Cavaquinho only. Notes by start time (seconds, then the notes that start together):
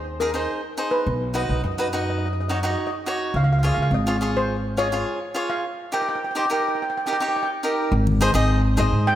0.20 D#4 G#4 A#4
0.34 D#4 G#4 C5
0.78 D#4 G#4 C5
1.34 D#4 F#4 B4
1.78 D#4 F#4 B4
1.93 D#4 F#4 B4
2.49 D#4 F#4 C#5
2.63 D#4 F#4 C#5
3.06 D#4 F#4 C#5
3.63 F4 G#4 C#5
4.07 F4 G#4 C#5
4.21 F4 G#4 C#5
4.77 F4 G#4 D#5
4.92 F4 G#4 C#5
5.34 F4 G#4 C#5
5.92 D#4 G4 A#4
6.35 D#4 G4 C5
6.50 D#4 G4 A#4
7.07 D#4 G4 A#4
7.20 D#4 G4 C#5
7.63 D#4 G4 A#4
8.21 D#4 G#4 C5
8.34 D#4 G#4 D#5
8.77 D#4 G#4 C5